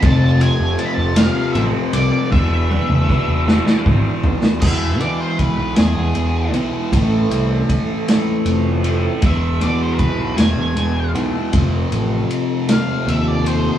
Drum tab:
CC |------------|------------|x-----------|------------|
RD |x-x-x-x-x-x-|------------|--x-x-x-x-x-|x-x-x-x-x-x-|
SD |------o-----|------oo---o|------o-----|------o-----|
T1 |------------|--o---------|------------|------------|
T2 |------------|---o--------|------------|------------|
FT |------------|----------o-|------------|------------|
BD |o-----------|o---o---o---|o---o-------|o---o-------|

CC |------------|------------|
RD |x-x-x-x-x-x-|x-x-x-x-x-x-|
SD |------o-----|------o-----|
T1 |------------|------------|
T2 |------------|------------|
FT |------------|------------|
BD |o---o-------|o-----------|